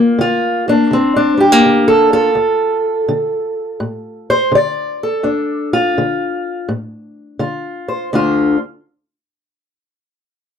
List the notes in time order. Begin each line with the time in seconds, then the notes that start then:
Already playing: G2 A#3 F4
0.19 D3 F4
0.68 A#3 D4
0.91 D3 C4
1.16 D4
1.37 G3 G4
1.52 A#3
1.65 D3
1.88 A4
2.13 F4 A4
2.35 D2
3.08 D3
3.80 A2
4.30 C5
4.52 D3 D5
5.03 A4
5.23 D2 D4
5.73 F4
5.98 D3
6.69 A2
7.39 D3 F4
7.88 C5
8.13 D2 D3 D4 F4